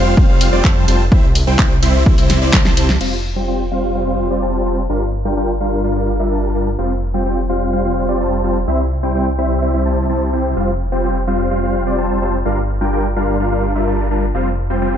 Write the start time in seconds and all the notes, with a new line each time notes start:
Already playing: F1 G3 C4 F4 C5 F5
0.17 F1 G3 C4 F4 C5 F5, kick
0.29 F1 G3 C4 F4 C5 F5
0.41 open hi-hat, ride
0.53 F1 G3 C4 F4 C5 D5
0.64 F2 G3 C4 F4 C5 A5, kick, clap
0.88 F1 G3 C4 F4 C5 A5, open hi-hat, ride
1.12 C2 G3 C4 E4 C5 E5, kick
1.35 open hi-hat, ride
1.47 C2 G3 C4 E4 C5 G5
1.59 C2 G3 C4 E4 C5 G5, kick, clap
1.83 C2 G3 C4 E4 C5 E5, open hi-hat, ride
2.06 C2 G3 C4 E4 C5 E5, kick
2.18 C2 G3 C4 E4 C5 E5, open hi-hat
2.30 snare, open hi-hat, ride
2.42 C2 G3 C4 E4 C5 D5
2.53 C2 G3 C4 E4 C5 A5, kick, snare, clap
2.65 snare
2.77 C2 G3 C4 E4 C5 A5, open hi-hat, ride
2.89 snare
3.01 F1 G3 C4 F4 C5 F5, crash
3.36 G3 C4 F4 C5 G5
3.48 G3 C4 F4 C5 G5
3.72 G3 C4 F4 C5 F5
3.95 G3 C4 F4 C5 F5
4.07 G3 C4 F4 C5 F5
4.31 G3 C4 F4 C5 D5
4.42 G3 C4 F4 C5 A5
4.66 G3 C4 F4 C5 A5
4.90 G1 G3 D4 F4 A#4 F5
5.25 G3 D4 F4 A#4 G5
5.37 G3 D4 F4 A#4 G5
5.61 G3 D4 F4 A#4 F5
5.84 G3 D4 F4 A#4 F5
5.96 G3 D4 F4 A#4 F5
6.20 G3 D4 F4 A#4 E5
6.31 G3 D4 F4 A#4 A5
6.55 G3 D4 F4 A#4 A5
6.79 F1 G3 C4 F4 C5 F5
7.14 G3 C4 F4 C5 G5
7.26 G3 C4 F4 C5 G5
7.49 G3 C4 F4 C5 F5
7.73 G3 C4 F4 C5 F5
7.85 G3 C4 F4 C5 F5
8.09 G3 C4 F4 C5 D5
8.20 G3 C4 F4 C5 A5
8.44 G3 C4 F4 C5 A5
8.68 C2 G3 C4 E4 C5 E5
9.03 G3 C4 E4 C5 G5
9.15 G3 C4 E4 C5 G5
9.38 G3 C4 E4 C5 E5
9.62 G3 C4 E4 C5 E5
9.74 G3 C4 E4 C5 E5
9.86 G3 C4 E4 C5 A5
10.09 G3 C4 E4 C5 A5
10.33 G3 C4 E4 C5 G5
10.57 F1 G3 C4 F4 C5 F5
10.92 G3 C4 F4 C5 G5
11.04 G3 C4 F4 C5 G5
11.28 G3 C4 F4 C5 F5
11.51 G3 C4 F4 C5 F5
11.63 G3 C4 F4 C5 F5
11.87 G3 C4 F4 C5 D5
11.98 G3 C4 F4 C5 A5
12.22 G3 C4 F4 C5 A5
12.46 G1 G3 D4 F4 A#4 F5
12.81 G3 D4 F4 A#4 G5
12.93 G3 D4 F4 A#4 G5
13.16 G3 D4 F4 A#4 F5
13.40 G3 D4 F4 A#4 F5
13.52 G3 D4 F4 A#4 F5
13.76 G3 D4 F4 A#4 E5
13.87 G3 D4 F4 A#4 A5
14.11 G3 D4 F4 A#4 A5
14.35 F1 G3 C4 F4 C5 F5
14.70 G3 C4 F4 C5 G5
14.82 G3 C4 F4 C5 G5